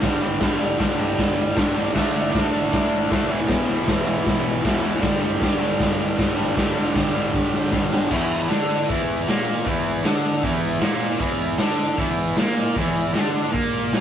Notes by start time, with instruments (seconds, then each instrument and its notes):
0.02 distorted electric guitar G2 D3 G3, kick, snare, crash
0.21 distorted electric guitar D3 G3
0.40 distorted electric guitar G2 D3 G3, kick, snare, crash
0.59 distorted electric guitar D3 G3
0.79 distorted electric guitar G2 D3 G3, kick, snare, crash
0.98 distorted electric guitar D3 G3
1.19 kick, snare, crash
1.56 distorted electric guitar G2 D3 G3, kick, snare, crash
1.74 distorted electric guitar D3 G3
1.93 distorted electric guitar D3 A3 D4, kick, snare, crash
2.12 distorted electric guitar A3 D4
2.30 distorted electric guitar D3 A3 D4
2.35 kick, snare, crash
2.50 distorted electric guitar A3 D4
2.73 kick, snare, crash
3.09 distorted electric guitar D3 A3 D4, kick, snare, crash
3.28 distorted electric guitar E2 B2 E3
3.48 distorted electric guitar E2 B2 E3, kick, snare, crash
3.66 distorted electric guitar B2 E3
3.85 distorted electric guitar E2 B2 E3, kick, snare, crash
4.06 distorted electric guitar B2 E3
4.26 kick, snare, crash
4.62 distorted electric guitar E2 B2 E3, kick
4.66 snare, crash
4.82 distorted electric guitar B2 E3
5.00 distorted electric guitar G2 D3 G3, kick, snare, crash
5.20 distorted electric guitar D3 G3
5.39 distorted electric guitar G2 D3 G3, kick, snare, crash
5.58 distorted electric guitar D3 G3
5.80 kick, snare, crash
6.17 distorted electric guitar G2 D3 G3, kick, snare, crash
6.35 distorted electric guitar D3 G3
6.55 distorted electric guitar G2 D3 G3, kick, snare, crash
6.75 distorted electric guitar D3 G3
6.93 distorted electric guitar G2 D3 G3, kick, snare, crash
7.12 distorted electric guitar D3 G3
7.34 kick, snare
7.53 snare
7.71 distorted electric guitar G2 D3 G3, kick, snare
7.91 distorted electric guitar D3 G3, snare
8.10 distorted electric guitar E2 E3, kick, crash
8.48 distorted electric guitar D3 D4, snare, open hi-hat
8.88 distorted electric guitar E2 E3, kick, open hi-hat
9.27 distorted electric guitar A#2 A#3, snare, open hi-hat
9.65 distorted electric guitar E2 E3, kick, open hi-hat
10.04 distorted electric guitar D3 D4, snare, open hi-hat
10.43 distorted electric guitar E2 E3, kick, open hi-hat
10.80 distorted electric guitar A#2 A#3, snare, open hi-hat
11.18 distorted electric guitar E2 E3, kick, open hi-hat
11.58 distorted electric guitar D3 D4, snare, open hi-hat
11.98 distorted electric guitar E2 E3, kick, open hi-hat
12.37 distorted electric guitar A#2 A#3, snare, open hi-hat
12.76 distorted electric guitar E2 E3, kick, open hi-hat
13.13 distorted electric guitar D3 D4, snare, open hi-hat
13.52 distorted electric guitar A#2 A#3, kick
13.56 open hi-hat
13.93 snare, open hi-hat